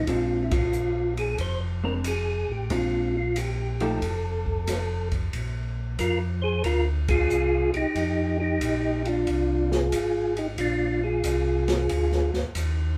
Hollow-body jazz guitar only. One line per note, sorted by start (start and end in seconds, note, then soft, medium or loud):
0.08 0.48 G#3 medium
0.08 0.48 C4 medium
0.08 0.48 D4 medium
1.84 2.03 G#3 medium
1.84 2.03 C4 medium
1.84 2.04 D4 medium
2.70 3.10 G#3 medium
2.70 3.11 C4 medium
2.70 3.11 D4 medium
3.81 4.00 F3 medium
3.81 4.00 A3 medium
3.81 4.01 D#4 medium
3.81 4.00 G4 medium